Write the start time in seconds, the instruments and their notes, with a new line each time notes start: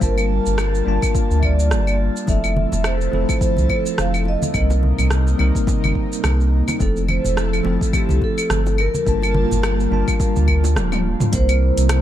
Already playing: analog synth pad G3 A#3 F4 A5
0.00 sub bass G1, tine electric piano G3 A#3 D4 F4 A5, vibraphone A#4, kick, shaker
0.18 claves, shaker
0.46 sub bass G1, shaker
0.58 cross-stick, claves, shaker
0.75 shaker
0.85 sub bass G1, tine electric piano G3 A#3 D4 F4 A5
1.02 kick, claves, shaker
1.15 kick, shaker
1.31 sub bass D2, shaker
1.39 vibraphone E5, claves
1.43 vibraphone D5, kick
1.60 shaker
1.71 sub bass G1, cross-stick, shaker
1.87 claves, shaker
2.16 shaker
2.26 sub bass F1, tine electric piano F3 A3 C4 E4 A4, analog synth pad F3 E4 A4, vibraphone E5, kick, high bongo, shaker
2.44 claves, shaker
2.56 high conga
2.72 sub bass F1, high bongo, low conga, shaker
2.84 vibraphone C5, cross-stick, claves, shaker
3.01 shaker
3.11 sub bass F1, tine electric piano F3 A3 C4 E4 A4, high conga
3.29 kick, high bongo, claves, shaker
3.41 vibraphone C5, kick, shaker
3.57 sub bass C2, high conga, shaker
3.69 kick, high bongo, claves
3.86 shaker
3.98 sub bass F1, vibraphone F5, cross-stick, high conga, shaker
4.14 claves, shaker
4.25 vibraphone D#5, high bongo
4.42 high conga, shaker
4.52 sub bass C2, analog synth pad C3 A#3 D#4, tine electric piano G3 A#3 C4 D#4 A#4, kick, claves, shaker
4.70 high bongo, shaker
4.83 high conga
4.99 sub bass C2, low conga, claves, shaker
5.10 cross-stick, shaker
5.27 high bongo, shaker
5.37 sub bass C2, tine electric piano G3 A#3 C4 D#4 A#4, high conga, claves
5.55 kick, shaker
5.67 kick, high bongo, shaker
5.84 sub bass G1, high conga, claves, shaker
5.95 kick
6.13 shaker
6.24 sub bass C2, cross-stick, high bongo, high conga, claves, shaker
6.41 shaker
6.68 high bongo, high conga, claves, shaker
6.78 sub bass F1, tine electric piano F3 A3 C4 E4 A4, analog synth pad F3 E4 A4, kick, shaker
6.82 vibraphone A4
6.97 shaker
7.08 vibraphone C5, high conga, claves
7.25 sub bass F1, high bongo, low conga, shaker
7.37 vibraphone A4, cross-stick, shaker
7.53 claves, shaker
7.63 sub bass F1, tine electric piano F3 A3 C4 E4 A4, high bongo, high conga
7.81 kick, shaker
7.93 vibraphone G4, kick, claves, shaker
8.09 sub bass C2, high conga, shaker
8.22 vibraphone A4, kick, high bongo
8.38 claves, shaker
8.50 sub bass G1, cross-stick, high conga, shaker
8.66 high bongo, shaker
8.78 analog synth pad G3 A#3 F4 A5, vibraphone A#4, claves
8.95 high conga, shaker
9.05 sub bass G1, tine electric piano G3 A#3 D4 F4 A5, kick, shaker
9.22 high bongo, claves, shaker
9.34 high conga
9.51 sub bass G1, low conga, shaker
9.63 cross-stick, high bongo, claves, shaker
9.80 shaker
9.90 sub bass G1, tine electric piano G3 A#3 D4 F4 A5, high conga
10.08 kick, claves, shaker
10.20 kick, high bongo, shaker
10.36 sub bass D2, high conga, shaker
10.48 kick, claves
10.64 high bongo, shaker
10.76 sub bass D1, cross-stick, high tom, high conga, shaker
10.92 high tom, claves, shaker
11.20 mid tom, high bongo, high conga, shaker
11.32 sub bass C2, analog synth pad C3 A#3 E4, tine electric piano G3 A#3 C4 E4 A#4, vibraphone C5, kick, closed hi-hat, shaker
11.49 closed hi-hat, claves, shaker
11.77 sub bass C2, closed hi-hat, shaker
11.89 cross-stick, closed hi-hat, claves, shaker